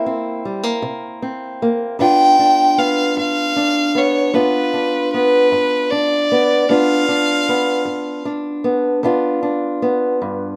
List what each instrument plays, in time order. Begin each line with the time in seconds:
Already playing: steel-string acoustic guitar C3 A#3 E4
0.06 steel-string acoustic guitar C4
0.45 steel-string acoustic guitar G3
0.63 steel-string acoustic guitar A#3
0.82 steel-string acoustic guitar C3
1.22 steel-string acoustic guitar C4
1.62 steel-string acoustic guitar A#3
1.99 steel-string acoustic guitar G2 B3 D4 F4, fiddle G5
2.39 steel-string acoustic guitar D4
2.78 steel-string acoustic guitar B3, fiddle F5
3.17 steel-string acoustic guitar G2, fiddle F5
3.56 steel-string acoustic guitar D4
3.95 steel-string acoustic guitar B3, fiddle C#5
4.34 steel-string acoustic guitar G2 B3 D4 F4, fiddle B4
4.74 steel-string acoustic guitar D4
5.12 steel-string acoustic guitar B3, fiddle B4
5.52 steel-string acoustic guitar G2
5.90 steel-string acoustic guitar D4, fiddle D5
6.32 steel-string acoustic guitar B3
6.69 steel-string acoustic guitar G2 B3 D4 F4, fiddle F5
7.09 steel-string acoustic guitar D4
7.49 steel-string acoustic guitar B3
7.85 steel-string acoustic guitar G2
8.25 steel-string acoustic guitar D4
8.64 steel-string acoustic guitar B3
9.03 steel-string acoustic guitar G2 B3 D4 F4
9.43 steel-string acoustic guitar D4
9.82 steel-string acoustic guitar B3
10.22 steel-string acoustic guitar G2